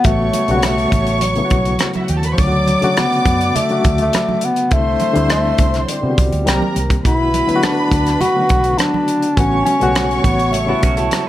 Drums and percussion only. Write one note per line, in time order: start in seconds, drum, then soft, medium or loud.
0.04 kick medium
0.04 closed hi-hat medium
0.04 muted conga soft
0.33 closed hi-hat medium
0.33 muted conga soft
0.48 closed hi-hat soft
0.63 cross-stick loud
0.63 closed hi-hat medium
0.63 high conga medium
0.78 closed hi-hat soft
0.92 kick medium
0.92 closed hi-hat medium
0.92 low conga medium
1.07 closed hi-hat soft
1.21 closed hi-hat medium
1.21 muted conga soft
1.35 closed hi-hat soft
1.50 kick medium
1.50 closed hi-hat medium
1.50 muted conga soft
1.65 closed hi-hat soft
1.79 cross-stick medium
1.79 closed hi-hat medium
1.79 high conga medium
1.93 closed hi-hat soft
1.93 high conga medium
2.08 closed hi-hat medium
2.23 closed hi-hat soft
2.38 kick medium
2.38 closed hi-hat medium
2.38 muted conga soft
2.67 closed hi-hat medium
2.67 muted conga soft
2.82 closed hi-hat soft
2.97 cross-stick loud
2.97 closed hi-hat medium
2.97 high conga medium
3.12 closed hi-hat soft
3.26 kick medium
3.26 closed hi-hat medium
3.41 closed hi-hat soft
3.56 closed hi-hat medium
3.56 muted conga soft
3.56 low conga medium
3.69 closed hi-hat soft
3.84 kick medium
3.84 closed hi-hat medium
3.84 muted conga soft
3.98 closed hi-hat soft
4.13 cross-stick medium
4.13 closed hi-hat medium
4.13 high conga medium
4.29 high conga medium
4.41 closed hi-hat medium
4.56 closed hi-hat medium
4.71 kick medium
4.71 closed hi-hat medium
4.71 muted conga soft
5.00 closed hi-hat medium
5.00 muted conga soft
5.16 closed hi-hat soft
5.30 cross-stick loud
5.30 closed hi-hat medium
5.30 high conga medium
5.58 kick medium
5.58 closed hi-hat medium
5.58 low conga medium
5.74 cross-stick soft
5.74 closed hi-hat soft
5.88 closed hi-hat medium
5.88 muted conga soft
6.18 kick medium
6.18 closed hi-hat medium
6.18 muted conga soft
6.32 closed hi-hat soft
6.47 cross-stick medium
6.47 closed hi-hat medium
6.47 high conga medium
6.62 high conga medium
6.76 closed hi-hat medium
6.90 kick medium
6.90 closed hi-hat soft
7.05 kick medium
7.05 closed hi-hat medium
7.34 closed hi-hat medium
7.34 muted conga soft
7.49 closed hi-hat soft
7.63 cross-stick loud
7.63 closed hi-hat medium
7.63 high conga medium
7.91 kick medium
7.91 closed hi-hat medium
8.07 cross-stick soft
8.07 closed hi-hat soft
8.21 closed hi-hat medium
8.21 muted conga soft
8.21 low conga medium
8.49 kick medium
8.49 closed hi-hat medium
8.49 muted conga soft
8.64 closed hi-hat soft
8.79 cross-stick medium
8.79 closed hi-hat medium
8.79 high conga medium
8.94 high conga medium
9.08 closed hi-hat medium
9.22 closed hi-hat soft
9.37 kick medium
9.37 closed hi-hat medium
9.66 closed hi-hat medium
9.66 muted conga soft
9.81 closed hi-hat soft
9.95 cross-stick loud
9.95 closed hi-hat medium
9.95 high conga medium
10.11 closed hi-hat soft
10.24 kick medium
10.24 closed hi-hat medium
10.24 low conga medium
10.39 closed hi-hat soft
10.53 closed hi-hat medium
10.53 muted conga soft
10.83 kick medium
10.83 closed hi-hat medium
10.83 muted conga soft
10.97 closed hi-hat soft
11.11 cross-stick medium
11.11 closed hi-hat medium
11.11 high conga soft